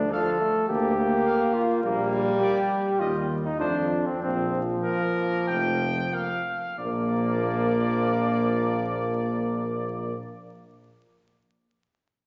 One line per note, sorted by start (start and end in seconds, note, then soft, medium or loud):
0.00 0.13 D4 loud
0.11 0.40 F3 medium
0.11 0.29 A3 medium
0.11 0.67 A4 loud
0.11 0.29 F5 medium
0.41 0.69 A3 medium
0.68 1.17 D2 medium
0.68 0.97 A#3 medium
0.68 1.56 G4 loud
0.98 1.82 A#3 medium
1.26 1.42 A#3 medium
1.26 1.43 F5 medium
1.54 1.83 F4 loud
1.83 2.32 A#1 medium
1.83 3.28 G3 loud
1.83 2.40 A#3 loud
2.41 2.58 A#3 medium
2.41 3.01 G4 loud
2.41 2.59 D5 medium
2.99 3.50 D#2 medium
2.99 3.17 G3 medium
2.99 3.32 F4 medium
2.99 3.17 D#5 medium
3.45 3.59 D#4 medium
3.60 4.11 F2 medium
3.60 4.18 F3 medium
3.60 3.76 A3 medium
3.60 4.08 D4 loud
3.60 3.76 C5 medium
4.07 4.21 C4 medium
4.22 4.74 A#1 medium
4.22 6.42 F3 medium
4.22 4.62 C4 loud
4.84 5.02 A#3 medium
4.84 6.09 A#3 medium
4.84 5.44 A#4 medium
5.48 6.02 F1 medium
5.48 6.15 G5 medium
6.12 6.28 A#3 medium
6.12 6.78 F5 medium
6.78 10.13 A#1 medium
6.78 10.13 F3 medium
6.78 10.13 A#3 medium
6.78 10.14 A#3 loud
6.78 10.14 D5 medium